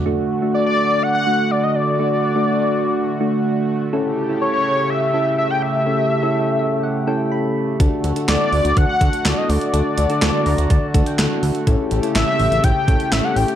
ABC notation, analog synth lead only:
X:1
M:4/4
L:1/16
Q:1/4=124
K:Dphr
V:1 name="Analog synth lead"
z4 d d3 ^f f3 d e d2- | d12- d2 z2 | z4 ^c c3 =e e3 e g e2- | =e12- e2 z2 |
z4 d d3 ^f f3 d e d2- | d12- d2 z2 | z4 =e e3 g g3 e ^f g2 |]